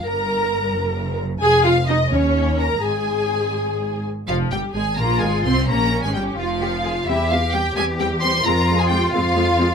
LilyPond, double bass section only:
\new Staff \with { instrumentName = "Double bass section" } { \clef bass \time 6/8 \key bes \dorian \tempo 4. = 87 g,,4. ges,,4. | f,,4. ees,4. | aes,,2~ aes,,8 r8 | \key f \minor f,,8 g,,8 aes,,8 bes,,8 aes,,8 c,8 |
bes,,8. aes,,16 g,,8 f,,4. | e,4. e,4. | f,4. f,4. | }